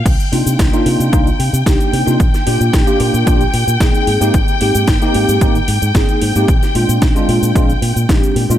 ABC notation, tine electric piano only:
X:1
M:4/4
L:1/16
Q:1/4=112
K:Cm
V:1 name="Tine electric piano"
z2 [B,DEF]3 [B,DEF]3 [B,DEF] z3 [B,DEG]3 [B,DEF] | z2 [B,DFG]3 [B,DFG]3 [B,DFG] z3 [B,CEA]3 [B,CEG] | z2 [B,CEG]3 [B,CEG]3 [B,CEG] z3 [B,CEA]3 [B,CEG] | z2 [A,CDF]3 [A,CDF]3 [A,CDF] z3 [A,CDG]3 [A,CDF] |]